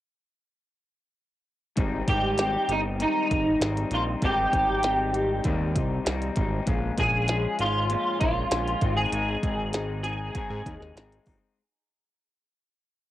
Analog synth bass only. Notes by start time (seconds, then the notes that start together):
1.78 G#1
2.08 G#1
2.69 G1
3.31 G#1
3.61 G#1
3.91 A#1
4.22 G#1
4.53 G#1
5.45 D#2
5.76 C2
6.06 C2
6.37 G#1
6.68 A#1
6.98 A#1
7.59 G#1
8.21 A#1
8.51 A#1
8.82 G#1
9.12 G#1
9.43 G#1
10.50 G#2
10.66 D#2
10.80 D#2
10.95 G#1
11.27 G1